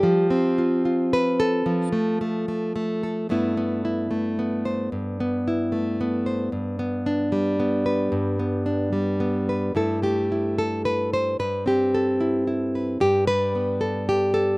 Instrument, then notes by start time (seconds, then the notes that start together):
nylon-string guitar
Already playing: G3 G4
0.03 F3
0.30 C4
0.58 F4
0.85 F4
1.13 B4
1.40 A4
1.66 F3
1.92 A3
2.21 A3
2.48 A3
2.76 A3
3.03 A4
3.29 G2 A3 B3 E4
3.57 B3
3.85 E4
4.11 A3
4.39 B3
4.65 C5
4.92 G2
5.20 B3
5.48 E4
5.72 A3
6.01 B3
6.26 C5
6.52 G2
6.79 B3
7.06 D4
7.32 G3
7.60 B3
7.86 B4
8.12 G2
8.39 B3
8.66 D4
8.93 G3
9.20 B3
9.49 B4
9.75 G2 A3 E4 A4
10.02 A3 G4
10.32 E4
10.58 A4
10.85 B4
11.13 C5
11.39 G2 B4
11.66 C4 G4
11.95 A4
12.21 E4
12.47 E4
12.75 B4
13.00 G2 G4
13.27 G3 B4
13.55 B3
13.81 A4
14.09 G4
14.34 A4